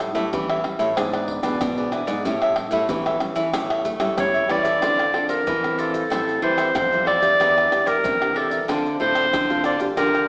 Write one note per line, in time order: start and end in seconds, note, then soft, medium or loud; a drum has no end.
0.00 0.29 A2 medium
0.00 0.11 G3 medium
0.00 0.11 C#4 medium
0.00 0.12 E4 medium
0.00 muted cavaquinho stroke soft
0.00 pandeiro medium
0.00 tamborim medium
0.00 shaker medium
0.15 0.29 A2 medium
0.15 0.59 G3 medium
0.15 0.59 C#4 medium
0.15 0.59 E4 medium
0.15 0.32 A4 medium
0.15 0.31 C#5 medium
0.15 0.30 E5 medium
0.15 pandeiro medium
0.15 shaker medium
0.33 0.94 E3 medium
0.33 0.60 E3 medium
0.33 0.48 G4 soft
0.33 0.48 A4 soft
0.33 0.48 C#5 soft
0.33 0.48 E5 soft
0.33 pandeiro medium
0.33 shaker medium
0.33 surdo loud
0.49 0.63 A4 medium
0.49 0.64 C#5 medium
0.49 0.64 E5 medium
0.49 pandeiro soft
0.49 tamborim medium
0.49 shaker soft
0.63 0.91 G3 soft
0.63 0.91 C#4 medium
0.63 0.91 E4 medium
0.63 muted cavaquinho stroke soft
0.63 pandeiro medium
0.63 tamborim medium
0.79 0.97 A2 medium
0.79 0.96 A4 medium
0.79 0.95 C#5 medium
0.79 0.95 E5 medium
0.79 pandeiro medium
0.79 shaker medium
0.96 1.57 G#2 medium
0.96 1.38 G#2 medium
0.96 1.39 E3 medium
0.96 1.39 B3 medium
0.96 1.40 D4 medium
0.96 1.11 E4 soft
0.96 1.12 G#4 medium
0.96 1.12 B4 soft
0.96 1.12 D5 medium
0.96 pandeiro medium
0.96 tamborim loud
0.96 shaker medium
0.96 surdo medium
1.13 1.44 G#4 medium
1.13 1.43 B4 medium
1.13 1.41 D5 medium
1.13 pandeiro soft
1.13 tamborim medium
1.13 shaker soft
1.28 pandeiro medium
1.28 surdo medium
1.43 1.58 B2 medium
1.43 1.87 E3 medium
1.43 1.87 B3 medium
1.43 1.87 D4 medium
1.43 1.76 G#4 medium
1.43 1.75 B4 medium
1.43 1.75 D5 medium
1.43 pandeiro medium
1.43 tamborim medium
1.43 shaker medium
1.60 2.22 G#2 medium
1.60 2.02 B2 medium
1.60 pandeiro medium
1.60 tamborim medium
1.60 shaker medium
1.60 surdo loud
1.78 1.92 G#4 medium
1.78 1.93 B4 medium
1.78 1.92 D5 medium
1.78 pandeiro soft
1.78 shaker soft
1.92 2.11 E3 medium
1.92 2.12 B3 medium
1.92 2.12 D4 medium
1.92 2.07 E4 medium
1.92 2.08 G#4 medium
1.92 2.07 B4 medium
1.92 2.06 D5 medium
1.92 pandeiro medium
1.92 tamborim medium
1.92 shaker medium
2.07 2.22 G#2 medium
2.07 2.24 G#4 medium
2.07 2.24 B4 medium
2.07 2.23 D5 medium
2.07 pandeiro medium
2.07 shaker loud
2.24 2.86 A2 medium
2.24 2.66 A2 medium
2.24 2.55 G3 medium
2.24 2.55 C#4 medium
2.24 2.55 E4 medium
2.24 2.40 G4 soft
2.24 2.41 A4 soft
2.24 2.41 C#5 soft
2.24 2.41 E5 medium
2.24 pandeiro medium
2.24 shaker medium
2.24 surdo medium
2.42 2.57 A4 medium
2.42 2.57 C#5 medium
2.42 2.56 E5 medium
2.42 pandeiro soft
2.42 tamborim medium
2.42 shaker soft
2.56 muted cavaquinho stroke soft
2.56 pandeiro medium
2.56 tamborim medium
2.71 2.86 A2 medium
2.71 3.15 G3 medium
2.71 3.16 C#4 medium
2.71 3.16 E4 medium
2.71 2.89 A4 medium
2.71 2.88 C#5 medium
2.71 2.88 E5 medium
2.71 pandeiro medium
2.71 shaker medium
2.89 3.50 E3 medium
2.89 3.17 E3 medium
2.89 3.04 G4 soft
2.89 3.05 A4 soft
2.89 3.05 C#5 soft
2.89 3.05 E5 soft
2.89 pandeiro medium
2.89 shaker medium
2.89 surdo loud
3.06 3.20 A4 medium
3.06 3.20 C#5 medium
3.06 3.21 E5 medium
3.06 pandeiro soft
3.06 tamborim medium
3.06 shaker soft
3.20 3.48 G3 medium
3.20 3.48 C#4 medium
3.20 3.48 E4 medium
3.20 pandeiro medium
3.20 tamborim medium
3.20 shaker medium
3.36 3.54 E3 medium
3.36 3.52 A4 medium
3.36 3.52 C#5 medium
3.36 3.51 E5 medium
3.36 pandeiro medium
3.36 shaker medium
3.53 3.81 A2 medium
3.53 4.15 A2 medium
3.53 3.97 G3 medium
3.53 3.97 C#4 medium
3.53 3.97 E4 medium
3.53 3.68 G4 soft
3.53 3.68 A4 soft
3.53 3.69 C#5 medium
3.53 3.69 E5 medium
3.53 pandeiro medium
3.53 tamborim loud
3.53 shaker loud
3.53 surdo medium
3.70 4.01 A4 medium
3.70 4.00 C#5 medium
3.70 3.99 E5 medium
3.70 pandeiro soft
3.70 tamborim medium
3.70 shaker soft
3.85 4.14 A3 medium
3.85 pandeiro medium
3.85 shaker medium
3.85 surdo medium
4.00 4.44 G3 medium
4.00 4.44 C#4 medium
4.00 4.44 E4 medium
4.00 4.33 A4 medium
4.00 4.32 C#5 medium
4.00 4.32 E5 medium
4.00 pandeiro medium
4.00 tamborim medium
4.00 shaker medium
4.18 4.79 E3 medium
4.18 4.47 G3 medium
4.18 4.52 C#5 medium
4.18 pandeiro medium
4.18 tamborim medium
4.18 shaker medium
4.18 surdo loud
4.34 4.48 A4 medium
4.34 4.48 C#5 medium
4.34 4.49 E5 medium
4.34 pandeiro soft
4.34 shaker soft
4.48 4.79 E3 medium
4.48 4.69 G3 soft
4.48 4.69 C#4 medium
4.48 4.70 E4 medium
4.48 4.64 G4 medium
4.48 4.64 A4 medium
4.48 4.63 C#5 soft
4.48 5.29 D5 loud
4.48 4.62 E5 medium
4.48 pandeiro medium
4.48 tamborim medium
4.63 4.80 A4 medium
4.63 4.80 C#5 medium
4.63 4.79 E5 medium
4.63 pandeiro medium
4.63 shaker medium
4.81 5.44 D3 medium
4.81 5.10 D3 medium
4.81 5.02 C4 medium
4.81 4.96 D4 medium
4.81 5.02 F4 soft
4.81 4.97 A4 medium
4.81 5.02 A4 medium
4.81 4.97 C5 medium
4.81 4.97 F5 medium
4.81 pandeiro medium
4.81 tamborim medium
4.81 shaker medium
4.81 surdo medium
4.98 5.12 A4 soft
4.98 5.13 C5 soft
4.98 5.13 F5 medium
4.98 pandeiro soft
4.98 tamborim medium
4.98 shaker soft
5.12 5.44 C4 medium
5.12 5.27 D4 soft
5.12 5.45 F4 medium
5.12 5.27 A4 medium
5.12 5.45 A4 medium
5.12 5.28 C5 medium
5.12 5.28 F5 medium
5.12 pandeiro medium
5.12 tamborim medium
5.28 5.38 D4 medium
5.28 5.39 A4 medium
5.28 5.80 A#4 medium
5.28 5.39 C5 medium
5.28 5.39 F5 medium
5.28 pandeiro medium
5.28 shaker medium
5.28 surdo soft
5.47 6.08 A2 medium
5.47 6.02 E3 medium
5.47 pandeiro medium
5.47 shaker medium
5.47 surdo loud
5.64 6.07 C4 medium
5.64 6.07 A4 medium
5.64 pandeiro soft
5.64 tamborim medium
5.64 shaker soft
5.78 5.93 D4 medium
5.78 5.94 A4 medium
5.78 6.42 A4 medium
5.78 5.93 C5 medium
5.78 5.92 F5 medium
5.78 pandeiro medium
5.78 shaker medium
5.94 6.09 A4 soft
5.94 6.10 C5 soft
5.94 6.09 F5 soft
5.94 pandeiro medium
5.94 shaker medium
5.94 surdo soft
6.10 6.38 A2 medium
6.10 6.72 A2 medium
6.10 6.38 G3 medium
6.10 6.38 C4 medium
6.10 6.39 E4 medium
6.10 6.41 A4 medium
6.10 6.41 C5 medium
6.10 6.42 E5 medium
6.10 6.43 G5 medium
6.10 pandeiro medium
6.10 tamborim medium
6.10 shaker medium
6.10 surdo medium
6.28 pandeiro soft
6.28 shaker soft
6.42 6.70 E3 medium
6.42 6.73 G3 medium
6.42 6.73 C4 medium
6.42 6.73 E4 medium
6.42 6.56 A4 medium
6.42 6.57 C5 medium
6.42 6.73 C5 medium
6.42 6.57 E5 medium
6.42 6.57 G5 medium
6.42 pandeiro medium
6.42 surdo soft
6.57 6.67 A4 medium
6.57 6.68 C5 medium
6.57 6.68 E5 medium
6.57 6.68 G5 medium
6.57 pandeiro medium
6.57 tamborim medium
6.57 shaker medium
6.75 7.30 F2 medium
6.75 7.37 E3 medium
6.75 7.06 C5 medium
6.75 pandeiro medium
6.75 tamborim loud
6.75 shaker medium
6.75 surdo loud
6.91 7.19 G3 medium
6.91 7.20 C4 medium
6.91 7.20 E4 medium
6.91 7.05 C5 soft
6.91 7.06 E5 soft
6.91 7.06 G5 soft
6.91 pandeiro soft
6.91 shaker soft
7.05 7.21 A4 medium
7.05 7.22 C5 medium
7.05 7.89 D5 loud
7.05 7.21 E5 medium
7.05 7.20 G5 medium
7.05 pandeiro medium
7.05 tamborim medium
7.21 7.66 A#3 medium
7.21 7.66 D4 medium
7.21 7.66 G4 medium
7.21 7.38 C5 soft
7.21 7.38 E5 soft
7.21 7.37 G5 soft
7.21 pandeiro medium
7.21 shaker medium
7.21 surdo soft
7.39 7.67 E2 medium
7.39 8.01 E3 medium
7.39 7.54 G4 medium
7.39 7.55 A#4 medium
7.39 7.55 D5 medium
7.39 7.55 E5 medium
7.39 pandeiro medium
7.39 tamborim medium
7.39 shaker medium
7.39 surdo medium
7.56 7.70 A#4 soft
7.56 7.71 D5 medium
7.56 7.71 E5 soft
7.56 pandeiro soft
7.56 tamborim medium
7.56 shaker soft
7.70 8.02 A#3 medium
7.70 8.02 D4 medium
7.70 7.84 G4 medium
7.70 8.02 G4 medium
7.70 7.85 A#4 medium
7.70 7.86 D5 medium
7.70 7.85 E5 medium
7.70 pandeiro medium
7.70 tamborim medium
7.70 shaker medium
7.86 7.96 G4 medium
7.86 7.96 A#4 medium
7.86 8.37 A#4 medium
7.86 7.97 D5 medium
7.86 7.96 E5 medium
7.86 pandeiro medium
7.86 shaker medium
7.86 surdo soft
8.04 8.59 C3 medium
8.04 8.65 E3 medium
8.04 pandeiro medium
8.04 shaker medium
8.04 surdo loud
8.20 8.64 A#3 medium
8.20 8.64 D4 medium
8.20 8.64 G4 medium
8.20 pandeiro soft
8.20 tamborim medium
8.20 shaker soft
8.34 8.50 G4 medium
8.34 8.74 A4 medium
8.34 8.51 A#4 medium
8.34 8.49 D5 medium
8.34 8.50 E5 medium
8.34 pandeiro medium
8.50 8.67 A#4 soft
8.50 8.66 D5 soft
8.50 8.67 E5 soft
8.50 pandeiro medium
8.50 shaker medium
8.50 surdo soft
8.68 8.96 D3 medium
8.68 9.30 D3 medium
8.68 8.88 C4 medium
8.68 8.98 D4 medium
8.68 8.88 F4 medium
8.68 8.99 A4 medium
8.68 8.88 A4 medium
8.68 9.00 C5 medium
8.68 9.00 F5 medium
8.68 pandeiro medium
8.68 tamborim medium
8.68 shaker medium
8.68 surdo medium
8.86 pandeiro soft
8.86 shaker soft
8.99 9.28 A2 medium
8.99 9.31 C4 medium
8.99 9.14 D4 soft
8.99 9.31 F4 medium
8.99 9.14 A4 medium
8.99 9.31 A4 medium
8.99 9.61 C5 loud
8.99 9.15 C5 medium
8.99 9.15 F5 medium
8.99 pandeiro medium
8.99 surdo soft
9.15 9.25 D4 medium
9.15 9.25 A4 medium
9.15 9.26 C5 medium
9.15 9.26 F5 medium
9.15 pandeiro medium
9.15 tamborim medium
9.15 shaker medium
9.32 9.94 A2 medium
9.32 9.88 D3 medium
9.32 pandeiro medium
9.32 tamborim medium
9.32 shaker medium
9.32 surdo loud
9.50 9.77 C4 medium
9.50 9.77 F4 medium
9.50 9.77 A4 medium
9.50 9.64 A4 soft
9.50 9.65 C5 soft
9.50 9.64 F5 soft
9.50 pandeiro soft
9.50 shaker soft
9.64 9.80 D4 medium
9.64 9.80 A4 medium
9.64 9.79 C5 medium
9.64 9.80 D5 medium
9.64 9.78 F5 medium
9.64 pandeiro medium
9.64 tamborim medium
9.64 shaker medium
9.64 surdo soft
9.79 10.24 A#3 medium
9.79 10.24 F4 medium
9.79 10.24 G4 medium
9.79 9.96 A4 soft
9.79 9.96 C5 soft
9.79 9.95 F5 medium
9.79 pandeiro medium
9.79 shaker medium
9.79 surdo soft
9.96 10.25 D3 medium
9.96 10.28 D3 medium
9.96 10.12 F4 medium
9.96 10.28 A#4 medium
9.96 10.12 A#4 medium
9.96 10.13 D5 medium
9.96 10.13 G5 medium
9.96 pandeiro medium
9.96 tamborim medium
9.96 shaker medium
9.96 surdo medium
10.14 10.28 A#4 soft
10.14 10.28 D5 soft
10.14 10.28 G5 medium
10.14 pandeiro soft
10.14 tamborim medium
10.14 shaker soft